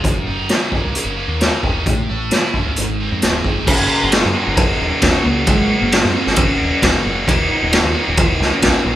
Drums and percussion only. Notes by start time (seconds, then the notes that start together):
0.04 kick, closed hi-hat
0.49 snare, closed hi-hat
0.72 kick
0.95 closed hi-hat
1.41 snare, closed hi-hat
1.63 kick
1.86 kick, closed hi-hat
2.31 snare, closed hi-hat
2.54 kick
2.76 closed hi-hat
3.22 snare, closed hi-hat
3.44 kick
3.67 kick, crash
4.12 snare, ride bell
4.57 kick, ride bell
5.02 kick, snare, ride bell
5.47 kick, ride bell
5.92 snare, ride bell
6.05 snare
6.27 snare
6.36 kick, ride bell
6.82 kick, snare, ride bell
7.28 kick, ride bell
7.73 snare, ride bell
8.17 kick, ride bell
8.41 snare
8.62 kick, snare, ride bell